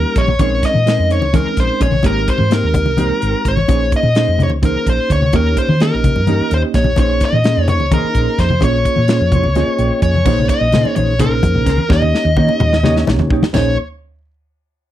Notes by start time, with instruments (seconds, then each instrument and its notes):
Already playing: tine electric piano G3 A#3 C#4 D#4 G4, lead electric guitar A#4
0.16 fingered electric bass A#1, clean electric guitar A#3 D#4 G4 C#5, lead electric guitar C#5, kick, closed hi-hat
0.28 high conga, low conga
0.39 fingered electric bass A#1, tine electric piano G#3 C4 C#4 D#4 A#4, clean electric guitar C#4 D#4 G#4 C5, lead electric guitar C#5, kick, closed hi-hat, muted conga, low conga
0.63 lead electric guitar D#5, kick, snare, closed hi-hat
0.74 fingered electric bass A#2, high conga
0.86 tine electric piano G#3 C4 C#4 D#4 A#4, clean electric guitar C#4 D#4 G#4 C5, snare, closed hi-hat
0.99 fingered electric bass F2
1.10 clean electric guitar D#4 G#4 C5, lead electric guitar C#5, closed hi-hat
1.22 fingered electric bass C#2, muted conga, low conga
1.33 tine electric piano G#3 C4 C#4 D#4 A#4, clean electric guitar C#4 D#4 G#4 C5, lead electric guitar A#4, kick, snare, closed hi-hat, high conga
1.46 muted fingered electric bass stroke
1.57 fingered electric bass A#1, clean electric guitar D#4 G#4 C5, lead electric guitar C5, kick, snare, closed hi-hat, low conga
1.80 fingered electric bass A#1, clean electric guitar C#4 D#4 G#4 C5, lead electric guitar C#5, kick, closed hi-hat
1.92 high conga, low conga
2.03 fingered electric bass G#1, tine electric piano G#3 C4 D#4 G4 A#4, clean electric guitar A#3 D#4 G4 C5, lead electric guitar A#4, kick, closed hi-hat, muted conga
2.26 lead electric guitar C5, kick, closed hi-hat, low conga
2.38 fingered electric bass G#2, high conga, low conga
2.50 tine electric piano G#3 C4 D#4 G4 A#4, clean electric guitar A#3 D#4 G4 C5, lead electric guitar A#4, snare, closed hi-hat
2.64 fingered electric bass D#2
2.74 kick, closed hi-hat, low conga
2.86 fingered electric bass C2, muted conga
2.97 tine electric piano G#3 C4 D#4 G4 A#4, clean electric guitar A#3 D#4 G4 C5, closed hi-hat, high conga, low conga
3.10 muted fingered electric bass stroke, low conga
3.20 fingered electric bass G#1, clean electric guitar D#4 G4 C5, closed hi-hat
3.45 fingered electric bass G#1, lead electric guitar C#5, kick, closed hi-hat
3.57 high conga, low conga
3.68 fingered electric bass A#1, tine electric piano A#3 C#4 D#4 G#4 C5, clean electric guitar C#4 D#4 G#4 C5, kick, closed hi-hat, muted conga, low conga
3.92 kick, closed hi-hat
3.96 lead electric guitar D#5
4.03 fingered electric bass A#2, high conga
4.15 tine electric piano A#3 C#4 D#4 G#4 C5, clean electric guitar C#4 D#4 G#4 C5, snare, closed hi-hat
4.28 fingered electric bass F2
4.39 closed hi-hat, low conga
4.43 lead electric guitar C#5
4.50 fingered electric bass C#2, muted conga, low conga
4.62 tine electric piano A#3 C#4 D#4 G#4 C5, clean electric guitar C#4 D#4 G#4 C5, lead electric guitar A#4, kick, closed hi-hat, high conga
4.76 muted fingered electric bass stroke
4.86 fingered electric bass A#1, lead electric guitar C5, kick, closed hi-hat, low conga
5.10 fingered electric bass D2, lead electric guitar C#5, kick, closed hi-hat
5.22 low conga
5.33 fingered electric bass D#2, clean electric guitar A#3 D#4 G4 C#5, tine electric piano A#3 C#4 D#4 G4 C#5, lead electric guitar A#4, kick, closed hi-hat, muted conga, low conga
5.57 lead electric guitar C5, kick, closed hi-hat
5.69 fingered electric bass D#3, high conga
5.80 clean electric guitar A#3 D#4 G4 C#5, tine electric piano A#3 C#4 D#4 G4 D#5, lead electric guitar A#4, snare, closed hi-hat
5.94 fingered electric bass A#1
6.04 kick, closed hi-hat, low conga
6.16 fingered electric bass G2, muted conga, low conga
6.27 clean electric guitar A#3 D#4 G4 C#5, tine electric piano A#3 C#4 D#4 G4 D#5, closed hi-hat, high conga
6.40 muted fingered electric bass stroke
6.50 fingered electric bass D#2, clean electric guitar D#4 G4 C#5, lead electric guitar C5, closed hi-hat, low conga
6.74 fingered electric bass A#1, clean electric guitar A#3 D#4 G4 C#5, lead electric guitar C#5, kick, snare, closed hi-hat
6.84 high conga, low conga
6.96 fingered electric bass A#1, tine electric piano A#3 C#4 D#4 G#4 C5, clean electric guitar C#4 D#4 G#4 C5, lead electric guitar C#5, kick, closed hi-hat, muted conga, low conga
7.21 kick, snare, closed hi-hat
7.25 lead electric guitar D#5
7.33 fingered electric bass A#2, high conga
7.44 tine electric piano A#3 C#4 D#4 G#4 C5, clean electric guitar C#4 D#4 G#4 C5, snare, closed hi-hat
7.57 fingered electric bass F2
7.68 lead electric guitar C#5, closed hi-hat, low conga
7.80 fingered electric bass C#2, muted conga, low conga
7.91 tine electric piano A#3 C#4 D#4 G#4 D#5, clean electric guitar C#4 D#4 G#4 C5, lead electric guitar A#4, kick, closed hi-hat, high conga
8.04 muted fingered electric bass stroke
8.14 fingered electric bass A#1, clean electric guitar D#4 G#4 C5, kick, closed hi-hat, low conga
8.38 fingered electric bass F2, lead electric guitar C5, kick, snare, closed hi-hat
8.50 high conga, low conga
8.61 fingered electric bass A#1, tine electric piano A#3 C#4 F4 G#4 C#5, clean electric guitar C#4 F4 G#4 C5, lead electric guitar C#5, kick, closed hi-hat, muted conga
8.85 kick, closed hi-hat
8.96 fingered electric bass A#2, high conga
9.08 tine electric piano A#3 C#4 F4 G#4 C#5, clean electric guitar C#4 F4 G#4 C5, snare, closed hi-hat, low conga
9.20 fingered electric bass F2, low conga
9.32 clean electric guitar F4 G#4 C5, kick, closed hi-hat, low conga
9.44 fingered electric bass C#2, muted conga
9.55 tine electric piano A#3 C#4 F4 G#4 D#5, clean electric guitar C#4 F4 G#4 C5, snare, closed hi-hat, high conga
9.78 fingered electric bass A#1, clean electric guitar F4 G#4 C5, tine electric piano G5, closed hi-hat
9.91 low conga
10.02 fingered electric bass F2, lead electric guitar C#5, tine electric piano G#5, kick, closed hi-hat
10.14 high conga, low conga
10.25 fingered electric bass A#1, tine electric piano A#3 C#4 D#4 G#4 C5, clean electric guitar C#4 D#4 G#4 C5, kick, crash, muted conga
10.39 low conga
10.49 lead electric guitar D#5, kick, closed hi-hat
10.61 fingered electric bass A#1
10.72 fingered electric bass A#2, tine electric piano A#3 C#4 D#4 G#4 C5, clean electric guitar C#4 D#4 G#4 C5, snare, closed hi-hat, low conga
10.85 muted conga, low conga
10.96 fingered electric bass A#1, clean electric guitar D#4 G#4 C5, lead electric guitar C#5, closed hi-hat, high conga
11.19 tine electric piano A#3 C#4 D#4 G#4 C5, clean electric guitar C#4 D#4 G#4 C5, lead electric guitar A#4, kick, closed hi-hat, low conga
11.43 fingered electric bass F2, kick, closed hi-hat, muted conga
11.55 fingered electric bass A#1, low conga
11.65 fingered electric bass C#2, clean electric guitar C#4 D#4 G#4 C5, kick, snare, closed hi-hat
11.78 high conga
11.89 fingered electric bass D#2, tine electric piano A#3 C#4 D#4 G4 C#5, clean electric guitar A#3 D#4 G4 C#5, lead electric guitar D#5, kick, snare, muted conga
12.02 low conga
12.15 snare
12.25 fingered electric bass D#2
12.36 fingered electric bass D#3, clean electric guitar A#3 D#4 G4 C#5, tine electric piano A#3 C#4 D#4 G4 C#5, kick, low conga
12.49 muted conga, low conga
12.60 fingered electric bass D#2, mid tom, high conga
12.73 snare
12.83 clean electric guitar A#3 D#4 G4 C#5, tine electric piano A#3 C#4 D#4 G4 C#5, snare, low conga
12.97 snare
13.07 fingered electric bass A#1, snare, muted conga
13.19 fingered electric bass D#2, floor tom, low conga
13.30 fingered electric bass B1, clean electric guitar A#3 D#4 G4 C#5, kick
13.43 snare, high conga
13.53 fingered electric bass A#1, tine electric piano A#3 C#4 D#4 G#4 C5, clean electric guitar C#4 D#4 G#4 C5, lead electric guitar C#5, snare, floor tom, crash, muted conga